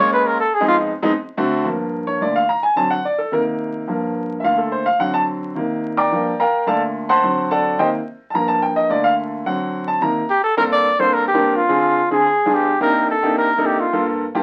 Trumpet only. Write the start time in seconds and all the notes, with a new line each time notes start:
0.00 C#5
0.13 B4
0.27 A#4
0.40 A4
0.54 G#4
0.68 F4
10.30 G4
10.44 A4
10.58 A#4
10.72 D5
11.00 C5
11.14 A#4
11.28 G4
11.56 F4
12.12 G#4
12.54 G4
12.82 A#4
13.11 A4
13.38 A#4
13.66 G4
13.80 F4